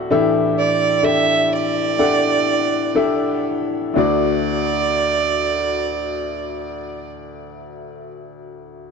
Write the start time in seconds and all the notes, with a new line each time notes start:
Already playing: F#4 A4 D5 E5
0.11 A2 E3 D4 E4 G4 A4 E5
0.58 D5
1.03 D4 E4 G4 A4 D5 E5
1.52 D5
1.98 D4 E4 G4 A4 F#5
2.95 D4 E4 G4 A4 E5
3.94 D2 A3 D4 F#4 D5
3.98 D5